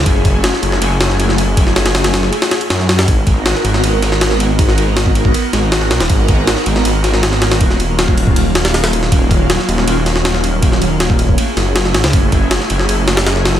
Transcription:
<<
  \new Staff \with { instrumentName = "Analog synth pad" } { \time 4/4 \key gis \minor \tempo 4 = 159 <a cis' e' gis'>4. <a cis' e' gis'>4 r16 <a cis' e' gis'>4~ <a cis' e' gis'>16 | <a cis' e' gis'>4. <a cis' e' gis'>4 r4 <a cis' e' gis'>8 | <b dis' fis' ais'>4. <b dis' fis' ais'>4 r16 <b dis' fis' ais'>4~ <b dis' fis' ais'>16 | <b dis' fis' ais'>4. <b dis' fis' ais'>4 r16 <b dis' fis' ais'>4~ <b dis' fis' ais'>16 |
<b dis' fis' ais'>4. <b dis' fis' ais'>4 r16 <b dis' fis' ais'>4~ <b dis' fis' ais'>16 | <fis ais cis' eis'>4. <fis ais cis' eis'>4 r16 <fis ais cis' eis'>4~ <fis ais cis' eis'>16 | <fis ais cis' eis'>4. <fis ais cis' eis'>4 r16 <fis ais cis' eis'>4~ <fis ais cis' eis'>16 | <fis ais cis' eis'>4. <a cis' e' gis'>4 r16 <a cis' e' gis'>4~ <a cis' e' gis'>16 |
<a cis' e' gis'>4. <a cis' e' gis'>4 r16 <a cis' e' gis'>4~ <a cis' e' gis'>16 | }
  \new Staff \with { instrumentName = "Detuned saw bass" } { \clef bass \time 4/4 \key gis \minor fis,,4~ fis,,16 r16 fis,,8 fis,,2~ | fis,,4. fis,,8 r4 fis,4 | gis,,4~ gis,,16 r16 gis,,8 gis,,2~ | gis,,4. gis,,8 r8 gis,,4 b,,16 dis,,16 |
gis,,4~ gis,,16 r16 gis,,8 gis,,2 | dis,,4. dis,,8 dis,,2 | dis,,4~ dis,,16 r16 dis,,8 dis,,2~ | dis,,4. dis,,8 r8 fis,,4 a,,16 cis,16 |
fis,,4~ fis,,16 r16 fis,,8 fis,,2 | }
  \new DrumStaff \with { instrumentName = "Drums" } \drummode { \time 4/4 <bd cymr>8 <bd cymr>8 <cymr sn>16 sn16 cymr16 sn16 cymr8 <cymr sn>16 sn16 cymr16 sn16 cymr8 | <bd cymr>16 sn16 <cymr sn>16 <cymr sn>16 <cymr sn>16 <cymr sn>16 <cymr sn>16 sn16 cymr16 <cymr sn>16 <cymr sn>16 cymr16 <cymr sn>16 sn16 <cymr sn>16 <cymr sn>16 | <bd cymr>8 <bd cymr>8 <cymr sn>16 sn16 cymr16 sn16 cymr8 <cymr sn>16 sn16 <cymr sn>16 sn16 cymr8 | <bd cymr>16 sn16 cymr8 <cymr sn>16 bd16 cymr16 bd16 cymr8 <cymr sn>8 <cymr sn>16 sn16 <cymr sn>16 <cymr sn>16 |
<bd cymr>8 <bd cymr>8 <cymr sn>16 sn16 cymr16 sn16 cymr8 <cymr sn>16 sn16 <cymr sn>16 sn16 <cymr sn>16 <cymr sn>16 | <bd cymr>16 sn16 cymr8 <cymr sn>16 bd16 cymr16 bd16 cymr8 <cymr sn>16 <cymr sn>16 <cymr sn>16 <cymr sn>16 cymr16 sn16 | <bd cymr>8 <bd cymr>8 <cymr sn>16 sn16 cymr16 sn16 cymr8 <cymr sn>16 sn16 <cymr sn>16 sn16 cymr8 | <bd cymr>16 sn16 cymr8 <cymr sn>16 bd16 cymr16 bd16 cymr8 <cymr sn>8 <cymr sn>16 sn16 <cymr sn>16 <cymr sn>16 |
<bd cymr>8 <bd cymr>8 <cymr sn>16 sn16 cymr16 sn16 cymr8 <cymr sn>16 <cymr sn>16 <cymr sn>16 sn16 <cymr sn>16 sn16 | }
>>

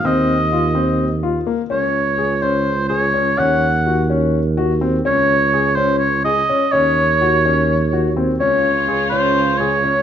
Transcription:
<<
  \new Staff \with { instrumentName = "Oboe" } { \time 7/8 \key des \major \tempo 4 = 125 ees''2~ ees''8 r4 | des''4. c''4 des''4 | ges''4. r2 | des''4. c''8 des''8 ees''4 |
des''2. r8 | des''4. c''4 des''4 | }
  \new Staff \with { instrumentName = "Grand piano" } { \time 7/8 \key des \major c'4 f'8 c'4 f'8 bes8 | des'4 aes'8 des'4 aes'8 des'8 | des'4 ges'8 des'4 ges'8 c'8 | des'4 aes'8 des'4 aes'8 des'8 |
des'4 ges'8 des'4 ges'8 c'8 | des'4 aes'8 des'4 aes'8 des'8 | }
  \new Staff \with { instrumentName = "String section" } { \time 7/8 \key des \major r2. r8 | r2. r8 | r2. r8 | r2. r8 |
r2. r8 | <des des' f'>2.~ <des des' f'>8 | }
  \new Staff \with { instrumentName = "Tuba" } { \clef bass \time 7/8 \key des \major ees,2. r8 | des,2.~ des,8 | ees,2.~ ees,8 | des,2. r8 |
ees,2.~ ees,8 | des,2.~ des,8 | }
>>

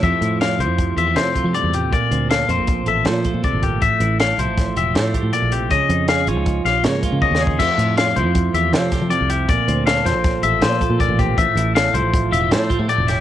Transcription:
<<
  \new Staff \with { instrumentName = "Clean electric guitar" } { \time 5/4 \key f \major \tempo 4 = 159 e''4 f''8 c''4 e''8 c''4 d''8 g'8 | d''4 f''8 c''4 e''8 c''4 d''8 g'8 | e''4 f''8 c''4 e''8 c''4 d''8 g'8 | ees''4 f''8 des''4 f''8 des''4 ees''8 aes'8 |
e''4 f''8 c''4 e''8 c''4 d''8 g'8 | d''4 f''8 c''4 e''8 c''4 d''8 g'8 | e''4 f''8 c''4 e''8 c''4 d''8 g'8 | }
  \new Staff \with { instrumentName = "Clean electric guitar" } { \time 5/4 \key f \major << { <f a e' g'>8 e'8 g'8 e'4 f'16 g'16 a8 f'16 g'4~ g'16 | r8 c'8 a'8 c'4 a'8 a8 a'4. | r8 e'8 a'8 e'4 g'8 a8 g'4. | r8 ees'8 aes'8 ees'4 g'8 bes8 f'4 ees'8 |
<f a e' g'>8 e'8 f'16 g'16 e'4 g'8 a8 g'4 e'8 | r8 c'8 a'8 c'4 a'8 a8 a'4 c'8~ | c'8 e'8 a'8 e'4 f'16 g'16 a8 f'16 g'8. e'8 | } \\ { f,4. f4. c4 g,8 a,8 | bes,4. f4. f4 c8 bes,8 | a,4. f4. a,4 bes,8 c8 | des4. f4. aes,4 des4 |
f,4. f4. c4 f,4 | bes,4. f4. f4 bes,4 | a,4. f4. a,4 a,4 | } >> }
  \new Staff \with { instrumentName = "Fingered electric bass" } { \clef bass \time 5/4 \key f \major f,16 r16 a,4 c,16 f,8. e,8 f8 r16 f16 r16 e,8. | bes,,16 r16 d,4 f,16 bes,,8. a,,8 bes,8 r16 bes,16 r16 aes,,8. | a,,16 r16 a,,4 c,16 a,,8. e,,8 a,8 r16 a,16 r16 bes,,8. | des,16 r16 f,4 aes,,16 des,8. bes,,8 des8 r16 des16 r16 ees,8. |
f,16 r16 a,4 c,16 f,8. e,8 f8 r16 f16 r16 c,8. | bes,,16 r16 d,4 f,16 bes,,8. a,,8 bes,8 r16 bes,16 r16 a,,8. | a,,16 r16 a,,4 c,16 a,,8. e,,8 a,8 r16 a,16 r16 e,,8. | }
  \new DrumStaff \with { instrumentName = "Drums" } \drummode { \time 5/4 <hh bd>8 hh8 <hh sn>8 hh8 <hh bd>8 hh8 <hh sn>8 <hh bd>8 hh8 hh8 | <hh bd>8 hh8 <hh sn>8 hh8 <hh bd>8 hh8 <hh sn>8 <hh bd>8 <hh bd>8 <hh bd>8 | <hh bd>8 hh8 <hh sn>8 hh8 <hh bd sn>8 hh8 <hh sn>8 <hh bd>8 hh8 hh8 | <hh bd>8 hh8 <hh sn>8 hh8 <hh bd>8 <hh sn>8 <hh sn>8 <hh bd>8 \tuplet 3/2 { <bd tommh>8 sn8 bd8 } |
<cymc hh bd>8 hh8 <hh sn>8 hh8 <hh bd>8 hh8 <hh sn>8 <hh bd sn>8 hh8 hh8 | <hh bd>8 hh8 <hh sn>8 <hh sn>8 <hh bd sn>8 hh8 <hh sn>8 <hh bd>8 <hh bd>8 <hh bd>8 | <hh bd>8 hh8 <hh sn>8 hh8 <hh bd>8 hh8 <hh sn>8 <hh bd>8 hh8 <hh sn>8 | }
>>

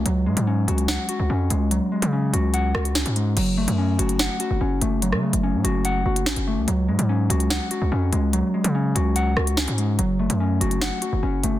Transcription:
<<
  \new Staff \with { instrumentName = "Clean electric guitar" } { \time 4/4 \key fis \minor \tempo 4 = 145 fis8 gis8 cis'8 fis'8 fis''8 fis'8 cis'8 gis8 | fis8 gis8 cis'8 fis'8 fis''8 fis'8 cis'8 gis8 | fis8 a8 cis'8 fis'8 fis''8 fis'8 cis'8 a8 | fis8 a8 cis'8 fis'8 fis''8 fis'8 cis'8 a8 |
fis8 gis8 cis'8 fis'8 fis''8 fis'8 cis'8 gis8 | fis8 gis8 cis'8 fis'8 fis''8 fis'8 cis'8 gis8 | fis8 a8 cis'8 fis'8 fis''8 fis'8 cis'8 a8 | }
  \new Staff \with { instrumentName = "808-style bass" } { \clef bass \time 4/4 \key fis \minor cis,8 gis,16 gis,8. cis,8. r8 cis,16 eis,8 cis,8~ | cis,16 r8 cis8. cis,4 cis,8. gis,8. | fis,,8. fis,8. fis,,8. r8 fis,,16 fis,,8 fis,,8~ | fis,,16 cis8 fis,,8 a,16 fis,,4 fis,,8 a,,16 fis,,8 cis,16 |
cis,8 gis,16 gis,8. cis,8. r8 cis,16 eis,8 cis,8~ | cis,16 r8 cis8. cis,4 cis,8. gis,8. | fis,,8. fis,8. fis,,8. r8 fis,,16 fis,,8 fis,,8 | }
  \new DrumStaff \with { instrumentName = "Drums" } \drummode { \time 4/4 hh8. hh16 r8 hh16 hh16 <hh sn>8 hh8 r8 hh8 | hh8. hh16 r8 hh8 hh8 ss16 hh16 sn16 hh16 hh8 | <cymc hh>8. hh16 r8 hh16 hh16 <hh sn>8 hh8 r8 hh8 | hh16 ss8 hh16 r8 hh8 hh8. hh16 sn16 hh8. |
hh8. hh16 r8 hh16 hh16 <hh sn>8 hh8 r8 hh8 | hh8. hh16 r8 hh8 hh8 ss16 hh16 sn16 hh16 hh8 | hh8. hh16 r8 hh16 hh16 <hh sn>8 hh8 r8 hh8 | }
>>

